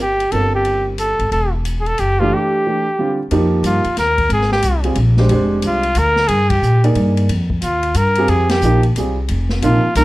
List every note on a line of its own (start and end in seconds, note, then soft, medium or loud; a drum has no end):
0.00 0.28 G1 medium
0.00 0.33 G4 medium
0.20 ride soft
0.32 1.16 G1 medium
0.32 1.24 G3 soft
0.32 1.24 C4 soft
0.32 1.25 F4 soft
0.32 0.53 A4 medium
0.32 1.25 A#4 medium
0.32 ride medium
0.55 0.85 G4 medium
0.65 ride soft
0.98 1.30 A4 medium
0.98 hi-hat pedal soft
0.98 ride medium
1.19 1.31 G#1 medium
1.19 ride soft
1.31 1.94 E1 medium
1.31 1.52 A4 medium
1.31 ride soft
1.65 hi-hat pedal soft
1.65 ride medium
1.80 1.88 G#4 medium
1.86 2.01 A4 medium
1.86 ride soft
1.98 2.30 F#1 medium
1.98 2.21 G4 medium
1.98 hi-hat pedal soft
1.98 ride medium
2.20 2.63 E3 medium
2.20 2.63 A3 medium
2.20 2.63 D4 medium
2.20 2.35 F4 medium
2.20 2.63 G4 medium
2.34 3.20 G4 medium
2.66 2.85 E3 soft
2.66 2.85 A3 soft
2.66 2.85 D4 soft
2.66 2.85 G4 medium
2.99 3.17 D3 medium
2.99 3.17 G3 medium
2.99 3.18 C4 soft
2.99 3.18 F4 medium
3.31 3.62 F2 medium
3.31 3.81 F3 medium
3.31 3.82 A#3 medium
3.31 3.82 D#4 medium
3.31 3.82 G4 medium
3.31 ride medium
3.63 3.83 G2 medium
3.63 3.96 F4 medium
3.63 hi-hat pedal medium
3.63 ride medium
3.84 muted upright bass stroke soft
3.84 ride soft
3.96 4.29 D#2 medium
3.96 4.29 A#4 medium
3.96 snare soft
3.96 hi-hat pedal soft
3.96 ride medium
4.18 kick medium
4.18 ride soft
4.29 4.62 G#1 medium
4.29 4.52 G#4 medium
4.29 ride medium
4.41 snare soft
4.52 4.83 G4 medium
4.52 snare soft
4.62 4.95 C2 medium
4.62 hi-hat pedal medium
4.62 ride medium
4.84 4.96 G3 medium
4.84 4.96 C4 medium
4.84 4.96 F4 medium
4.84 4.96 G#4 medium
4.84 ride soft
4.95 5.29 A#1 loud
4.95 ride medium
5.17 5.29 G#3 medium
5.17 5.30 D4 medium
5.17 5.29 G4 medium
5.17 5.30 C5 medium
5.17 snare soft
5.29 5.62 F1 medium
5.29 5.81 G#3 medium
5.29 5.81 D4 medium
5.29 5.81 G4 medium
5.29 5.81 C5 medium
5.29 ride medium
5.62 5.95 C2 medium
5.62 hi-hat pedal soft
5.62 ride medium
5.67 6.00 F4 medium
5.83 ride soft
5.95 6.28 D2 medium
5.95 6.29 A#4 loud
5.95 hi-hat pedal medium
5.95 ride medium
6.16 snare soft
6.28 6.61 G2 medium
6.28 6.51 G#4 medium
6.28 ride medium
6.50 6.84 G4 medium
6.50 kick medium
6.50 ride medium
6.62 6.95 A#2 medium
6.62 hi-hat pedal soft
6.84 7.27 A#3 medium
6.84 7.27 D#4 medium
6.84 7.27 G#4 medium
6.84 7.27 D5 medium
6.84 ride soft
6.95 7.28 G2 medium
6.95 ride medium
7.17 ride soft
7.29 7.62 F2 medium
7.29 ride medium
7.50 kick medium
7.62 7.94 D#2 medium
7.62 7.98 F4 medium
7.62 hi-hat pedal medium
7.62 ride medium
7.83 ride soft
7.94 8.28 G2 medium
7.94 8.31 A#4 loud
7.94 hi-hat pedal soft
7.94 ride medium
8.15 8.61 C4 medium
8.15 8.61 F4 medium
8.15 8.61 G4 medium
8.15 ride soft
8.20 8.61 G#4 medium
8.28 8.61 F2 medium
8.28 8.52 G#4 medium
8.28 ride medium
8.49 8.84 G4 medium
8.49 snare medium
8.49 ride medium
8.61 8.94 A#1 medium
8.61 8.82 F3 medium
8.61 8.82 A#3 medium
8.61 8.82 D#4 medium
8.61 8.83 G4 medium
8.61 hi-hat pedal medium
8.83 ride soft
8.95 9.28 C2 medium
8.95 9.16 G3 medium
8.95 9.16 C4 soft
8.95 9.16 F4 soft
8.95 9.16 G#4 medium
8.95 hi-hat pedal soft
8.95 ride medium
9.28 9.61 F1 medium
9.28 ride medium
9.49 snare medium
9.62 9.81 A#1 medium
9.62 9.81 C3 medium
9.62 9.81 F3 medium
9.62 9.82 A#3 medium
9.62 9.82 D#4 medium
9.62 9.94 F4 medium
9.62 hi-hat pedal soft
9.62 ride medium
9.83 muted upright bass stroke soft
9.95 10.04 C2 medium
9.95 10.04 C3 medium
9.95 10.04 F3 medium
9.95 10.04 A#3 medium
9.95 10.04 D#4 medium
9.95 10.04 A#4 loud
9.95 hi-hat pedal medium
9.95 ride medium